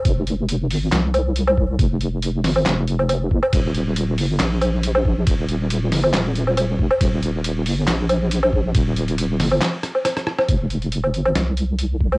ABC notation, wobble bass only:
X:1
M:4/4
L:1/16
Q:"Swing 16ths" 1/4=138
K:Fm
V:1 name="Wobble bass" clef=bass
F,,,6 A,,,2 C,,8 | F,,,6 A,,,2 F,,,6 G,,, z | E,,,6 G,,,2 B,,,8 | E,,,6 G,,,2 E,,,6 F,,, z |
E,,,6 G,,,2 B,,,8 | E,,,6 G,,,2 z8 | F,,,6 A,,,2 C,,8 |]